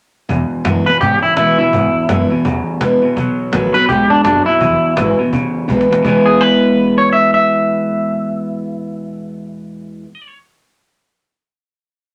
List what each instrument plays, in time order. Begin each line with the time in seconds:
0.29 steel-string acoustic guitar E2, clean electric guitar E2 B2, upright bass E2, cajon bass
0.50 muted upright bass stroke, cajon slap
0.64 clean electric guitar E2 B2, upright bass F#2, steel-string acoustic guitar E3 G#3 B3 E4, cajon slap
0.85 clean electric guitar E2 B2 B4, steel-string acoustic guitar B3 E4, muted upright bass stroke, cajon slap
1.01 clean electric guitar E2 C#3 G4, upright bass G#2, steel-string acoustic guitar B2, cajon bass
1.22 clean electric guitar E4, muted upright bass stroke, cajon slap
1.36 clean electric guitar E2 B2 E4, upright bass B2, steel-string acoustic guitar E3 G#3 B3 E4, cajon slap
1.58 clean electric guitar E2 B2 E4, steel-string acoustic guitar B3 E4, muted upright bass stroke, cajon slap
1.73 steel-string acoustic guitar E2, clean electric guitar E2 B2, upright bass G#2, cajon bass
1.94 muted upright bass stroke, cajon slap
2.08 clean electric guitar E2 B2, upright bass F#2, steel-string acoustic guitar E3 G#3 B3 E4, cajon slap
2.30 clean electric guitar E2 B2, steel-string acoustic guitar B3 E4, muted upright bass stroke
2.45 clean electric guitar E2 C#3, upright bass E2, steel-string acoustic guitar B2, cajon bass
2.66 muted upright bass stroke, cajon slap
2.80 upright bass C#2, clean electric guitar E2 B2, steel-string acoustic guitar E3 G#3 B3 E4, cajon bass, cajon slap
3.02 clean electric guitar E2 B2, steel-string acoustic guitar B3 E4, muted upright bass stroke, cajon slap
3.16 upright bass B1, clean electric guitar B2 F#3, steel-string acoustic guitar B2, cajon bass
3.38 muted upright bass stroke, cajon slap
3.52 upright bass A1, clean electric guitar B2 F#3, steel-string acoustic guitar D#3 A3 B3 F#4, cajon slap
3.73 clean electric guitar B2 F#3 B4, steel-string acoustic guitar B3 F#4, muted upright bass stroke, cajon slap
3.88 upright bass B1, steel-string acoustic guitar G#2, clean electric guitar B2 G#3 G4, cajon bass
4.10 clean electric guitar D4, muted upright bass stroke, cajon slap
4.24 upright bass F#1, steel-string acoustic guitar F#2, clean electric guitar B2 F#3 D4, cajon slap
4.46 clean electric guitar B2 F#3 E4, muted upright bass stroke, cajon slap
4.60 upright bass E1, steel-string acoustic guitar E2, clean electric guitar E2 B2, cajon bass
4.82 muted upright bass stroke, cajon slap
4.96 upright bass G#1, clean electric guitar E2 B2, steel-string acoustic guitar E3 G#3 B3 E4, cajon slap
5.18 clean electric guitar E2 B2, steel-string acoustic guitar B3 E4, muted upright bass stroke, cajon slap
5.33 clean electric guitar E2 C#3, steel-string acoustic guitar B2, cajon bass, cajon slap
5.54 muted upright bass stroke, cajon slap
5.68 upright bass B1, clean electric guitar E2 B2, steel-string acoustic guitar E3 G#3 B3 E4, cajon bass, cajon slap
5.81 cajon slap
5.90 clean electric guitar E2 B2, muted upright bass stroke, cajon slap
5.93 cajon slap
6.03 steel-string acoustic guitar E2 B2 E3 G#3 B3 E4, upright bass E2, clean electric guitar E3 G#3 B3 E4 G#4, cajon bass
6.26 clean electric guitar G#4
6.41 clean electric guitar B4
6.98 clean electric guitar C#5
7.13 clean electric guitar E5
7.34 clean electric guitar E5